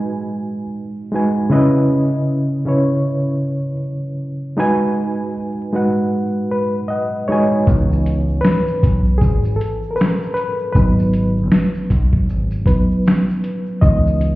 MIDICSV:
0, 0, Header, 1, 4, 480
1, 0, Start_track
1, 0, Key_signature, 4, "minor"
1, 0, Tempo, 769231
1, 946, Time_signature, 4, 2, 24, 8
1, 8956, End_track
2, 0, Start_track
2, 0, Title_t, "Reed electric piano"
2, 0, Program_c, 0, 4
2, 0, Control_c, 0, 64, 127
2, 0, Note_on_c, 0, 56, 76
2, 0, Note_on_c, 0, 63, 76
2, 0, Note_on_c, 0, 66, 56
2, 0, Note_on_c, 0, 71, 69
2, 0, Note_on_c, 0, 80, 89
2, 398, Note_off_c, 0, 56, 0
2, 400, Note_off_c, 0, 63, 0
2, 402, Note_off_c, 0, 66, 0
2, 407, Note_off_c, 0, 71, 0
2, 409, Note_off_c, 0, 80, 0
2, 698, Note_on_c, 0, 56, 89
2, 706, Note_on_c, 0, 63, 69
2, 712, Note_on_c, 0, 66, 73
2, 716, Note_on_c, 0, 71, 71
2, 723, Note_on_c, 0, 80, 87
2, 878, Note_off_c, 0, 56, 0
2, 882, Note_off_c, 0, 63, 0
2, 885, Note_off_c, 0, 66, 0
2, 887, Note_off_c, 0, 71, 0
2, 890, Note_off_c, 0, 80, 0
2, 934, Note_on_c, 0, 49, 114
2, 940, Note_on_c, 0, 61, 88
2, 944, Note_on_c, 0, 64, 104
2, 949, Note_on_c, 0, 71, 94
2, 953, Control_c, 0, 64, 0
2, 953, Note_on_c, 0, 75, 103
2, 1075, Control_c, 0, 64, 127
2, 1423, Note_off_c, 0, 49, 0
2, 1425, Note_off_c, 0, 61, 0
2, 1428, Note_off_c, 0, 64, 0
2, 1430, Note_off_c, 0, 71, 0
2, 1432, Note_off_c, 0, 75, 0
2, 1654, Note_on_c, 0, 49, 73
2, 1659, Note_on_c, 0, 61, 73
2, 1666, Note_on_c, 0, 64, 69
2, 1672, Note_on_c, 0, 71, 66
2, 1675, Note_on_c, 0, 73, 86
2, 2317, Note_off_c, 0, 49, 0
2, 2320, Note_off_c, 0, 61, 0
2, 2324, Note_off_c, 0, 64, 0
2, 2327, Note_off_c, 0, 71, 0
2, 2328, Note_off_c, 0, 73, 0
2, 2850, Note_on_c, 0, 56, 88
2, 2856, Note_on_c, 0, 63, 100
2, 2862, Note_on_c, 0, 66, 90
2, 2867, Note_on_c, 0, 71, 99
2, 2870, Note_on_c, 0, 80, 127
2, 2875, Control_c, 0, 64, 0
2, 2977, Control_c, 0, 64, 127
2, 3341, Note_off_c, 0, 56, 0
2, 3343, Note_off_c, 0, 63, 0
2, 3347, Note_off_c, 0, 66, 0
2, 3349, Note_off_c, 0, 71, 0
2, 3351, Note_off_c, 0, 80, 0
2, 3573, Note_on_c, 0, 56, 77
2, 3577, Note_on_c, 0, 63, 66
2, 3584, Note_on_c, 0, 66, 71
2, 3589, Note_on_c, 0, 71, 69
2, 3595, Note_on_c, 0, 78, 85
2, 4056, Note_off_c, 0, 71, 0
2, 4063, Note_on_c, 0, 71, 88
2, 4237, Note_off_c, 0, 56, 0
2, 4239, Note_off_c, 0, 63, 0
2, 4242, Note_off_c, 0, 66, 0
2, 4248, Note_off_c, 0, 78, 0
2, 4293, Note_on_c, 0, 75, 85
2, 4307, Note_on_c, 0, 78, 66
2, 4312, Note_off_c, 0, 71, 0
2, 4530, Note_off_c, 0, 78, 0
2, 4542, Note_on_c, 0, 73, 98
2, 4547, Note_off_c, 0, 75, 0
2, 4547, Note_on_c, 0, 56, 82
2, 4551, Note_on_c, 0, 63, 77
2, 4557, Note_on_c, 0, 75, 67
2, 4558, Note_on_c, 0, 66, 73
2, 4562, Note_on_c, 0, 71, 72
2, 4569, Note_on_c, 0, 80, 104
2, 4722, Note_off_c, 0, 56, 0
2, 4724, Note_off_c, 0, 63, 0
2, 4728, Note_off_c, 0, 66, 0
2, 4730, Note_off_c, 0, 71, 0
2, 4733, Note_off_c, 0, 80, 0
2, 4775, Note_off_c, 0, 75, 0
2, 4793, Note_on_c, 0, 52, 55
2, 4795, Control_c, 0, 64, 0
2, 4796, Note_on_c, 0, 59, 50
2, 4802, Note_on_c, 0, 63, 66
2, 4906, Control_c, 0, 64, 127
2, 5126, Note_off_c, 0, 52, 0
2, 5128, Note_off_c, 0, 59, 0
2, 5131, Note_off_c, 0, 63, 0
2, 5239, Note_off_c, 0, 73, 0
2, 5248, Note_on_c, 0, 71, 104
2, 5728, Note_on_c, 0, 68, 86
2, 5752, Note_off_c, 0, 71, 0
2, 5959, Note_off_c, 0, 68, 0
2, 5966, Note_on_c, 0, 69, 73
2, 6166, Note_off_c, 0, 69, 0
2, 6181, Note_on_c, 0, 70, 61
2, 6214, Note_on_c, 0, 71, 92
2, 6221, Note_off_c, 0, 70, 0
2, 6443, Note_off_c, 0, 71, 0
2, 6453, Note_on_c, 0, 71, 91
2, 6685, Note_off_c, 0, 71, 0
2, 6692, Note_on_c, 0, 71, 83
2, 6705, Note_on_c, 0, 54, 55
2, 6707, Note_on_c, 0, 59, 53
2, 6712, Note_on_c, 0, 63, 63
2, 6713, Control_c, 0, 64, 0
2, 6835, Control_c, 0, 64, 127
2, 7042, Note_off_c, 0, 54, 0
2, 7043, Note_off_c, 0, 59, 0
2, 7046, Note_off_c, 0, 63, 0
2, 7154, Note_off_c, 0, 71, 0
2, 7904, Note_on_c, 0, 71, 78
2, 7905, Note_on_c, 0, 54, 51
2, 7907, Note_on_c, 0, 59, 47
2, 7909, Note_on_c, 0, 63, 47
2, 8121, Note_off_c, 0, 54, 0
2, 8122, Note_off_c, 0, 59, 0
2, 8124, Note_off_c, 0, 63, 0
2, 8600, Note_off_c, 0, 71, 0
2, 8617, Note_on_c, 0, 52, 56
2, 8619, Note_on_c, 0, 75, 95
2, 8623, Note_on_c, 0, 59, 49
2, 8626, Note_on_c, 0, 63, 56
2, 8635, Control_c, 0, 64, 0
2, 8757, Control_c, 0, 64, 127
2, 8956, Note_off_c, 0, 52, 0
2, 8956, Note_off_c, 0, 59, 0
2, 8956, Note_off_c, 0, 63, 0
2, 8956, Note_off_c, 0, 75, 0
2, 8956, End_track
3, 0, Start_track
3, 0, Title_t, "Picked electric bass"
3, 0, Program_c, 1, 34
3, 4791, Note_on_c, 1, 37, 101
3, 5244, Note_off_c, 1, 37, 0
3, 5511, Note_on_c, 1, 35, 86
3, 5733, Note_off_c, 1, 35, 0
3, 5751, Note_on_c, 1, 32, 97
3, 5973, Note_off_c, 1, 32, 0
3, 6710, Note_on_c, 1, 32, 105
3, 7163, Note_off_c, 1, 32, 0
3, 7431, Note_on_c, 1, 35, 88
3, 7679, Note_off_c, 1, 35, 0
3, 7679, Note_on_c, 1, 32, 98
3, 7897, Note_off_c, 1, 32, 0
3, 8625, Note_on_c, 1, 37, 106
3, 8956, Note_off_c, 1, 37, 0
3, 8956, End_track
4, 0, Start_track
4, 0, Title_t, "Drums"
4, 4780, Note_on_c, 9, 82, 57
4, 4787, Note_on_c, 9, 36, 111
4, 4792, Note_off_c, 9, 82, 0
4, 4792, Note_on_c, 9, 82, 73
4, 4849, Note_off_c, 9, 36, 0
4, 4854, Note_off_c, 9, 82, 0
4, 4930, Note_on_c, 9, 82, 37
4, 4943, Note_off_c, 9, 82, 0
4, 4943, Note_on_c, 9, 82, 45
4, 5006, Note_off_c, 9, 82, 0
4, 5030, Note_on_c, 9, 42, 60
4, 5030, Note_on_c, 9, 82, 39
4, 5093, Note_off_c, 9, 42, 0
4, 5093, Note_off_c, 9, 82, 0
4, 5169, Note_on_c, 9, 82, 47
4, 5231, Note_off_c, 9, 82, 0
4, 5262, Note_on_c, 9, 82, 73
4, 5268, Note_off_c, 9, 82, 0
4, 5268, Note_on_c, 9, 82, 57
4, 5270, Note_on_c, 9, 38, 107
4, 5273, Note_on_c, 9, 26, 77
4, 5330, Note_off_c, 9, 82, 0
4, 5333, Note_off_c, 9, 38, 0
4, 5336, Note_off_c, 9, 26, 0
4, 5408, Note_on_c, 9, 82, 43
4, 5410, Note_off_c, 9, 82, 0
4, 5410, Note_on_c, 9, 82, 50
4, 5472, Note_off_c, 9, 82, 0
4, 5497, Note_on_c, 9, 82, 43
4, 5509, Note_on_c, 9, 36, 89
4, 5514, Note_off_c, 9, 82, 0
4, 5514, Note_on_c, 9, 42, 59
4, 5514, Note_on_c, 9, 82, 40
4, 5572, Note_off_c, 9, 36, 0
4, 5576, Note_off_c, 9, 42, 0
4, 5576, Note_off_c, 9, 82, 0
4, 5643, Note_on_c, 9, 82, 44
4, 5705, Note_off_c, 9, 82, 0
4, 5747, Note_on_c, 9, 82, 73
4, 5750, Note_on_c, 9, 36, 98
4, 5756, Note_off_c, 9, 82, 0
4, 5756, Note_on_c, 9, 82, 50
4, 5812, Note_off_c, 9, 36, 0
4, 5818, Note_off_c, 9, 82, 0
4, 5884, Note_on_c, 9, 82, 58
4, 5893, Note_off_c, 9, 82, 0
4, 5893, Note_on_c, 9, 82, 57
4, 5955, Note_off_c, 9, 82, 0
4, 5990, Note_on_c, 9, 82, 39
4, 5997, Note_off_c, 9, 82, 0
4, 5997, Note_on_c, 9, 42, 74
4, 5997, Note_on_c, 9, 82, 57
4, 6059, Note_off_c, 9, 42, 0
4, 6059, Note_off_c, 9, 82, 0
4, 6131, Note_on_c, 9, 82, 42
4, 6194, Note_off_c, 9, 82, 0
4, 6224, Note_on_c, 9, 82, 70
4, 6239, Note_off_c, 9, 82, 0
4, 6239, Note_on_c, 9, 82, 73
4, 6246, Note_on_c, 9, 38, 116
4, 6249, Note_on_c, 9, 26, 102
4, 6301, Note_off_c, 9, 82, 0
4, 6309, Note_off_c, 9, 38, 0
4, 6312, Note_off_c, 9, 26, 0
4, 6376, Note_on_c, 9, 82, 45
4, 6383, Note_off_c, 9, 82, 0
4, 6383, Note_on_c, 9, 82, 43
4, 6445, Note_off_c, 9, 82, 0
4, 6469, Note_on_c, 9, 42, 61
4, 6469, Note_on_c, 9, 82, 43
4, 6531, Note_off_c, 9, 42, 0
4, 6531, Note_off_c, 9, 82, 0
4, 6605, Note_on_c, 9, 82, 42
4, 6668, Note_off_c, 9, 82, 0
4, 6708, Note_on_c, 9, 36, 109
4, 6709, Note_on_c, 9, 82, 58
4, 6713, Note_off_c, 9, 82, 0
4, 6713, Note_on_c, 9, 82, 68
4, 6770, Note_off_c, 9, 36, 0
4, 6775, Note_off_c, 9, 82, 0
4, 6857, Note_on_c, 9, 82, 41
4, 6859, Note_off_c, 9, 82, 0
4, 6859, Note_on_c, 9, 82, 42
4, 6921, Note_off_c, 9, 82, 0
4, 6948, Note_on_c, 9, 42, 53
4, 6948, Note_on_c, 9, 82, 42
4, 7010, Note_off_c, 9, 42, 0
4, 7010, Note_off_c, 9, 82, 0
4, 7097, Note_on_c, 9, 82, 44
4, 7160, Note_off_c, 9, 82, 0
4, 7184, Note_on_c, 9, 82, 68
4, 7186, Note_on_c, 9, 38, 104
4, 7188, Note_off_c, 9, 82, 0
4, 7188, Note_on_c, 9, 82, 67
4, 7189, Note_on_c, 9, 26, 75
4, 7248, Note_off_c, 9, 38, 0
4, 7251, Note_off_c, 9, 26, 0
4, 7251, Note_off_c, 9, 82, 0
4, 7327, Note_on_c, 9, 82, 45
4, 7337, Note_off_c, 9, 82, 0
4, 7337, Note_on_c, 9, 82, 43
4, 7399, Note_off_c, 9, 82, 0
4, 7424, Note_on_c, 9, 82, 50
4, 7427, Note_on_c, 9, 36, 90
4, 7430, Note_off_c, 9, 82, 0
4, 7430, Note_on_c, 9, 42, 59
4, 7430, Note_on_c, 9, 82, 39
4, 7489, Note_off_c, 9, 36, 0
4, 7493, Note_off_c, 9, 42, 0
4, 7493, Note_off_c, 9, 82, 0
4, 7567, Note_on_c, 9, 82, 44
4, 7568, Note_on_c, 9, 36, 84
4, 7630, Note_off_c, 9, 36, 0
4, 7630, Note_off_c, 9, 82, 0
4, 7667, Note_on_c, 9, 82, 75
4, 7673, Note_off_c, 9, 82, 0
4, 7673, Note_on_c, 9, 82, 47
4, 7735, Note_off_c, 9, 82, 0
4, 7805, Note_on_c, 9, 82, 54
4, 7807, Note_off_c, 9, 82, 0
4, 7807, Note_on_c, 9, 82, 50
4, 7869, Note_off_c, 9, 82, 0
4, 7898, Note_on_c, 9, 36, 108
4, 7909, Note_on_c, 9, 42, 76
4, 7909, Note_on_c, 9, 82, 54
4, 7916, Note_off_c, 9, 82, 0
4, 7916, Note_on_c, 9, 82, 42
4, 7961, Note_off_c, 9, 36, 0
4, 7971, Note_off_c, 9, 42, 0
4, 7979, Note_off_c, 9, 82, 0
4, 8054, Note_on_c, 9, 82, 37
4, 8117, Note_off_c, 9, 82, 0
4, 8144, Note_on_c, 9, 82, 60
4, 8152, Note_off_c, 9, 82, 0
4, 8152, Note_on_c, 9, 82, 67
4, 8159, Note_on_c, 9, 38, 114
4, 8162, Note_on_c, 9, 26, 98
4, 8214, Note_off_c, 9, 82, 0
4, 8222, Note_off_c, 9, 38, 0
4, 8225, Note_off_c, 9, 26, 0
4, 8296, Note_on_c, 9, 82, 46
4, 8298, Note_off_c, 9, 82, 0
4, 8298, Note_on_c, 9, 82, 45
4, 8360, Note_off_c, 9, 82, 0
4, 8385, Note_on_c, 9, 42, 62
4, 8385, Note_on_c, 9, 82, 40
4, 8448, Note_off_c, 9, 42, 0
4, 8448, Note_off_c, 9, 82, 0
4, 8524, Note_on_c, 9, 82, 44
4, 8586, Note_off_c, 9, 82, 0
4, 8622, Note_on_c, 9, 82, 60
4, 8624, Note_on_c, 9, 36, 104
4, 8627, Note_off_c, 9, 82, 0
4, 8627, Note_on_c, 9, 82, 69
4, 8686, Note_off_c, 9, 36, 0
4, 8690, Note_off_c, 9, 82, 0
4, 8767, Note_on_c, 9, 82, 43
4, 8778, Note_off_c, 9, 82, 0
4, 8778, Note_on_c, 9, 82, 48
4, 8840, Note_off_c, 9, 82, 0
4, 8867, Note_on_c, 9, 42, 54
4, 8867, Note_on_c, 9, 82, 44
4, 8930, Note_off_c, 9, 42, 0
4, 8930, Note_off_c, 9, 82, 0
4, 8956, End_track
0, 0, End_of_file